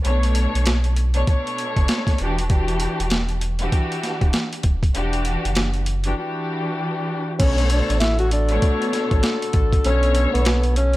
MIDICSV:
0, 0, Header, 1, 6, 480
1, 0, Start_track
1, 0, Key_signature, 2, "minor"
1, 0, Tempo, 612245
1, 40, Time_signature, 4, 2, 24, 8
1, 8598, End_track
2, 0, Start_track
2, 0, Title_t, "Saxophone section"
2, 0, Program_c, 0, 65
2, 5812, Note_on_c, 0, 50, 93
2, 5812, Note_on_c, 0, 69, 102
2, 5813, Note_on_c, 0, 66, 90
2, 8598, Note_off_c, 0, 50, 0
2, 8598, Note_off_c, 0, 66, 0
2, 8598, Note_off_c, 0, 69, 0
2, 8598, End_track
3, 0, Start_track
3, 0, Title_t, "String section"
3, 0, Program_c, 1, 48
3, 32, Note_on_c, 1, 47, 96
3, 37, Note_on_c, 1, 57, 90
3, 41, Note_on_c, 1, 62, 95
3, 43, Note_on_c, 1, 73, 118
3, 710, Note_off_c, 1, 47, 0
3, 713, Note_off_c, 1, 57, 0
3, 714, Note_off_c, 1, 62, 0
3, 715, Note_off_c, 1, 73, 0
3, 895, Note_on_c, 1, 47, 92
3, 898, Note_on_c, 1, 57, 86
3, 901, Note_on_c, 1, 62, 92
3, 905, Note_on_c, 1, 73, 104
3, 988, Note_off_c, 1, 47, 0
3, 992, Note_off_c, 1, 57, 0
3, 995, Note_off_c, 1, 62, 0
3, 998, Note_off_c, 1, 73, 0
3, 998, Note_on_c, 1, 47, 98
3, 1001, Note_on_c, 1, 57, 88
3, 1004, Note_on_c, 1, 62, 87
3, 1008, Note_on_c, 1, 73, 106
3, 1719, Note_off_c, 1, 47, 0
3, 1721, Note_off_c, 1, 57, 0
3, 1722, Note_off_c, 1, 62, 0
3, 1724, Note_off_c, 1, 73, 0
3, 1727, Note_on_c, 1, 52, 97
3, 1731, Note_on_c, 1, 62, 91
3, 1735, Note_on_c, 1, 66, 88
3, 1739, Note_on_c, 1, 67, 105
3, 1941, Note_off_c, 1, 52, 0
3, 1944, Note_off_c, 1, 62, 0
3, 1947, Note_off_c, 1, 66, 0
3, 1951, Note_off_c, 1, 67, 0
3, 1951, Note_on_c, 1, 52, 101
3, 1954, Note_on_c, 1, 62, 93
3, 1957, Note_on_c, 1, 66, 89
3, 1961, Note_on_c, 1, 67, 113
3, 2629, Note_off_c, 1, 52, 0
3, 2631, Note_off_c, 1, 62, 0
3, 2632, Note_off_c, 1, 66, 0
3, 2634, Note_off_c, 1, 67, 0
3, 2822, Note_on_c, 1, 52, 105
3, 2825, Note_on_c, 1, 62, 85
3, 2830, Note_on_c, 1, 66, 94
3, 2832, Note_on_c, 1, 67, 111
3, 3585, Note_off_c, 1, 52, 0
3, 3587, Note_off_c, 1, 62, 0
3, 3589, Note_off_c, 1, 66, 0
3, 3590, Note_off_c, 1, 67, 0
3, 3880, Note_on_c, 1, 52, 92
3, 3885, Note_on_c, 1, 62, 93
3, 3887, Note_on_c, 1, 66, 92
3, 3892, Note_on_c, 1, 67, 113
3, 4554, Note_off_c, 1, 52, 0
3, 4556, Note_off_c, 1, 62, 0
3, 4558, Note_off_c, 1, 66, 0
3, 4560, Note_off_c, 1, 67, 0
3, 4744, Note_on_c, 1, 52, 82
3, 4748, Note_on_c, 1, 62, 86
3, 4751, Note_on_c, 1, 66, 80
3, 4755, Note_on_c, 1, 67, 101
3, 4823, Note_off_c, 1, 52, 0
3, 4826, Note_off_c, 1, 62, 0
3, 4829, Note_off_c, 1, 66, 0
3, 4832, Note_on_c, 1, 52, 96
3, 4834, Note_off_c, 1, 67, 0
3, 4835, Note_on_c, 1, 62, 90
3, 4839, Note_on_c, 1, 66, 88
3, 4843, Note_on_c, 1, 67, 107
3, 5735, Note_off_c, 1, 52, 0
3, 5736, Note_off_c, 1, 62, 0
3, 5738, Note_off_c, 1, 66, 0
3, 5740, Note_off_c, 1, 67, 0
3, 5809, Note_on_c, 1, 47, 100
3, 5812, Note_on_c, 1, 57, 100
3, 5816, Note_on_c, 1, 50, 95
3, 5821, Note_on_c, 1, 73, 113
3, 6479, Note_off_c, 1, 47, 0
3, 6480, Note_off_c, 1, 57, 0
3, 6482, Note_off_c, 1, 50, 0
3, 6484, Note_off_c, 1, 73, 0
3, 6663, Note_on_c, 1, 47, 105
3, 6666, Note_on_c, 1, 57, 98
3, 6670, Note_on_c, 1, 62, 96
3, 6674, Note_on_c, 1, 73, 112
3, 7426, Note_off_c, 1, 47, 0
3, 7427, Note_off_c, 1, 57, 0
3, 7429, Note_off_c, 1, 62, 0
3, 7431, Note_off_c, 1, 73, 0
3, 7715, Note_on_c, 1, 47, 98
3, 7719, Note_on_c, 1, 57, 93
3, 7724, Note_on_c, 1, 50, 95
3, 7726, Note_on_c, 1, 73, 126
3, 8391, Note_off_c, 1, 47, 0
3, 8394, Note_off_c, 1, 57, 0
3, 8396, Note_off_c, 1, 50, 0
3, 8397, Note_off_c, 1, 73, 0
3, 8598, End_track
4, 0, Start_track
4, 0, Title_t, "Tenor saxophone"
4, 0, Program_c, 2, 66
4, 5792, Note_on_c, 2, 61, 94
4, 6012, Note_off_c, 2, 61, 0
4, 6041, Note_on_c, 2, 62, 74
4, 6256, Note_off_c, 2, 62, 0
4, 6268, Note_on_c, 2, 64, 81
4, 6403, Note_off_c, 2, 64, 0
4, 6422, Note_on_c, 2, 66, 79
4, 6509, Note_off_c, 2, 66, 0
4, 6526, Note_on_c, 2, 62, 80
4, 6885, Note_off_c, 2, 62, 0
4, 7725, Note_on_c, 2, 61, 94
4, 8084, Note_off_c, 2, 61, 0
4, 8100, Note_on_c, 2, 59, 78
4, 8417, Note_off_c, 2, 59, 0
4, 8443, Note_on_c, 2, 61, 89
4, 8598, Note_off_c, 2, 61, 0
4, 8598, End_track
5, 0, Start_track
5, 0, Title_t, "Sub bass"
5, 0, Program_c, 3, 38
5, 42, Note_on_c, 3, 35, 106
5, 368, Note_off_c, 3, 35, 0
5, 427, Note_on_c, 3, 35, 97
5, 972, Note_off_c, 3, 35, 0
5, 1385, Note_on_c, 3, 30, 89
5, 1466, Note_off_c, 3, 30, 0
5, 1723, Note_on_c, 3, 28, 89
5, 2253, Note_off_c, 3, 28, 0
5, 2346, Note_on_c, 3, 28, 89
5, 2892, Note_off_c, 3, 28, 0
5, 3305, Note_on_c, 3, 26, 87
5, 3386, Note_off_c, 3, 26, 0
5, 3638, Note_on_c, 3, 26, 102
5, 3843, Note_off_c, 3, 26, 0
5, 3884, Note_on_c, 3, 28, 108
5, 4210, Note_off_c, 3, 28, 0
5, 4269, Note_on_c, 3, 30, 92
5, 4814, Note_off_c, 3, 30, 0
5, 5802, Note_on_c, 3, 35, 112
5, 6128, Note_off_c, 3, 35, 0
5, 6188, Note_on_c, 3, 33, 94
5, 6733, Note_off_c, 3, 33, 0
5, 7146, Note_on_c, 3, 33, 90
5, 7227, Note_off_c, 3, 33, 0
5, 7479, Note_on_c, 3, 33, 92
5, 7684, Note_off_c, 3, 33, 0
5, 7724, Note_on_c, 3, 35, 107
5, 8049, Note_off_c, 3, 35, 0
5, 8109, Note_on_c, 3, 35, 92
5, 8598, Note_off_c, 3, 35, 0
5, 8598, End_track
6, 0, Start_track
6, 0, Title_t, "Drums"
6, 37, Note_on_c, 9, 42, 81
6, 115, Note_off_c, 9, 42, 0
6, 183, Note_on_c, 9, 42, 54
6, 261, Note_off_c, 9, 42, 0
6, 274, Note_on_c, 9, 42, 87
6, 352, Note_off_c, 9, 42, 0
6, 434, Note_on_c, 9, 42, 60
6, 512, Note_off_c, 9, 42, 0
6, 514, Note_on_c, 9, 42, 94
6, 524, Note_on_c, 9, 38, 109
6, 593, Note_off_c, 9, 42, 0
6, 602, Note_off_c, 9, 38, 0
6, 658, Note_on_c, 9, 42, 51
6, 737, Note_off_c, 9, 42, 0
6, 756, Note_on_c, 9, 42, 74
6, 835, Note_off_c, 9, 42, 0
6, 893, Note_on_c, 9, 42, 53
6, 971, Note_off_c, 9, 42, 0
6, 999, Note_on_c, 9, 36, 104
6, 999, Note_on_c, 9, 42, 78
6, 1077, Note_off_c, 9, 36, 0
6, 1077, Note_off_c, 9, 42, 0
6, 1152, Note_on_c, 9, 42, 48
6, 1231, Note_off_c, 9, 42, 0
6, 1242, Note_on_c, 9, 42, 72
6, 1321, Note_off_c, 9, 42, 0
6, 1384, Note_on_c, 9, 36, 97
6, 1385, Note_on_c, 9, 42, 49
6, 1462, Note_off_c, 9, 36, 0
6, 1463, Note_off_c, 9, 42, 0
6, 1476, Note_on_c, 9, 42, 96
6, 1481, Note_on_c, 9, 38, 106
6, 1554, Note_off_c, 9, 42, 0
6, 1560, Note_off_c, 9, 38, 0
6, 1621, Note_on_c, 9, 36, 86
6, 1627, Note_on_c, 9, 38, 35
6, 1627, Note_on_c, 9, 42, 54
6, 1700, Note_off_c, 9, 36, 0
6, 1705, Note_off_c, 9, 38, 0
6, 1706, Note_off_c, 9, 42, 0
6, 1712, Note_on_c, 9, 42, 81
6, 1791, Note_off_c, 9, 42, 0
6, 1870, Note_on_c, 9, 42, 59
6, 1948, Note_off_c, 9, 42, 0
6, 1958, Note_on_c, 9, 42, 83
6, 1959, Note_on_c, 9, 36, 116
6, 2036, Note_off_c, 9, 42, 0
6, 2037, Note_off_c, 9, 36, 0
6, 2102, Note_on_c, 9, 42, 52
6, 2181, Note_off_c, 9, 42, 0
6, 2193, Note_on_c, 9, 42, 85
6, 2271, Note_off_c, 9, 42, 0
6, 2352, Note_on_c, 9, 42, 60
6, 2431, Note_off_c, 9, 42, 0
6, 2433, Note_on_c, 9, 42, 92
6, 2442, Note_on_c, 9, 38, 107
6, 2511, Note_off_c, 9, 42, 0
6, 2521, Note_off_c, 9, 38, 0
6, 2576, Note_on_c, 9, 42, 49
6, 2655, Note_off_c, 9, 42, 0
6, 2676, Note_on_c, 9, 42, 71
6, 2755, Note_off_c, 9, 42, 0
6, 2813, Note_on_c, 9, 42, 51
6, 2891, Note_off_c, 9, 42, 0
6, 2919, Note_on_c, 9, 36, 99
6, 2920, Note_on_c, 9, 42, 82
6, 2997, Note_off_c, 9, 36, 0
6, 2998, Note_off_c, 9, 42, 0
6, 3072, Note_on_c, 9, 42, 47
6, 3150, Note_off_c, 9, 42, 0
6, 3163, Note_on_c, 9, 38, 33
6, 3163, Note_on_c, 9, 42, 71
6, 3241, Note_off_c, 9, 38, 0
6, 3242, Note_off_c, 9, 42, 0
6, 3304, Note_on_c, 9, 36, 95
6, 3305, Note_on_c, 9, 42, 50
6, 3382, Note_off_c, 9, 36, 0
6, 3383, Note_off_c, 9, 42, 0
6, 3395, Note_on_c, 9, 42, 93
6, 3401, Note_on_c, 9, 38, 107
6, 3473, Note_off_c, 9, 42, 0
6, 3479, Note_off_c, 9, 38, 0
6, 3549, Note_on_c, 9, 42, 54
6, 3627, Note_off_c, 9, 42, 0
6, 3633, Note_on_c, 9, 42, 79
6, 3637, Note_on_c, 9, 36, 96
6, 3711, Note_off_c, 9, 42, 0
6, 3715, Note_off_c, 9, 36, 0
6, 3784, Note_on_c, 9, 36, 96
6, 3790, Note_on_c, 9, 42, 61
6, 3863, Note_off_c, 9, 36, 0
6, 3868, Note_off_c, 9, 42, 0
6, 3878, Note_on_c, 9, 42, 83
6, 3956, Note_off_c, 9, 42, 0
6, 4022, Note_on_c, 9, 42, 52
6, 4101, Note_off_c, 9, 42, 0
6, 4115, Note_on_c, 9, 42, 83
6, 4193, Note_off_c, 9, 42, 0
6, 4274, Note_on_c, 9, 42, 61
6, 4353, Note_off_c, 9, 42, 0
6, 4354, Note_on_c, 9, 42, 91
6, 4364, Note_on_c, 9, 38, 107
6, 4432, Note_off_c, 9, 42, 0
6, 4442, Note_off_c, 9, 38, 0
6, 4497, Note_on_c, 9, 42, 50
6, 4575, Note_off_c, 9, 42, 0
6, 4596, Note_on_c, 9, 42, 73
6, 4675, Note_off_c, 9, 42, 0
6, 4733, Note_on_c, 9, 42, 52
6, 4811, Note_off_c, 9, 42, 0
6, 5798, Note_on_c, 9, 42, 85
6, 5800, Note_on_c, 9, 36, 122
6, 5800, Note_on_c, 9, 49, 99
6, 5877, Note_off_c, 9, 42, 0
6, 5878, Note_off_c, 9, 36, 0
6, 5879, Note_off_c, 9, 49, 0
6, 5944, Note_on_c, 9, 42, 57
6, 6022, Note_off_c, 9, 42, 0
6, 6035, Note_on_c, 9, 42, 86
6, 6113, Note_off_c, 9, 42, 0
6, 6194, Note_on_c, 9, 42, 62
6, 6272, Note_off_c, 9, 42, 0
6, 6275, Note_on_c, 9, 42, 94
6, 6285, Note_on_c, 9, 38, 105
6, 6354, Note_off_c, 9, 42, 0
6, 6363, Note_off_c, 9, 38, 0
6, 6418, Note_on_c, 9, 42, 50
6, 6497, Note_off_c, 9, 42, 0
6, 6518, Note_on_c, 9, 42, 75
6, 6596, Note_off_c, 9, 42, 0
6, 6653, Note_on_c, 9, 42, 54
6, 6731, Note_off_c, 9, 42, 0
6, 6759, Note_on_c, 9, 42, 81
6, 6760, Note_on_c, 9, 36, 103
6, 6838, Note_off_c, 9, 36, 0
6, 6838, Note_off_c, 9, 42, 0
6, 6913, Note_on_c, 9, 42, 50
6, 6991, Note_off_c, 9, 42, 0
6, 7003, Note_on_c, 9, 38, 35
6, 7003, Note_on_c, 9, 42, 76
6, 7081, Note_off_c, 9, 38, 0
6, 7082, Note_off_c, 9, 42, 0
6, 7144, Note_on_c, 9, 36, 97
6, 7144, Note_on_c, 9, 42, 50
6, 7222, Note_off_c, 9, 36, 0
6, 7222, Note_off_c, 9, 42, 0
6, 7235, Note_on_c, 9, 42, 93
6, 7241, Note_on_c, 9, 38, 110
6, 7314, Note_off_c, 9, 42, 0
6, 7319, Note_off_c, 9, 38, 0
6, 7388, Note_on_c, 9, 42, 55
6, 7466, Note_off_c, 9, 42, 0
6, 7473, Note_on_c, 9, 42, 82
6, 7478, Note_on_c, 9, 36, 103
6, 7552, Note_off_c, 9, 42, 0
6, 7556, Note_off_c, 9, 36, 0
6, 7625, Note_on_c, 9, 36, 100
6, 7629, Note_on_c, 9, 42, 62
6, 7703, Note_off_c, 9, 36, 0
6, 7708, Note_off_c, 9, 42, 0
6, 7718, Note_on_c, 9, 42, 85
6, 7797, Note_off_c, 9, 42, 0
6, 7863, Note_on_c, 9, 42, 57
6, 7941, Note_off_c, 9, 42, 0
6, 7955, Note_on_c, 9, 42, 92
6, 8033, Note_off_c, 9, 42, 0
6, 8115, Note_on_c, 9, 42, 61
6, 8193, Note_off_c, 9, 42, 0
6, 8194, Note_on_c, 9, 42, 91
6, 8203, Note_on_c, 9, 38, 110
6, 8272, Note_off_c, 9, 42, 0
6, 8282, Note_off_c, 9, 38, 0
6, 8338, Note_on_c, 9, 42, 51
6, 8416, Note_off_c, 9, 42, 0
6, 8438, Note_on_c, 9, 42, 75
6, 8516, Note_off_c, 9, 42, 0
6, 8573, Note_on_c, 9, 42, 54
6, 8598, Note_off_c, 9, 42, 0
6, 8598, End_track
0, 0, End_of_file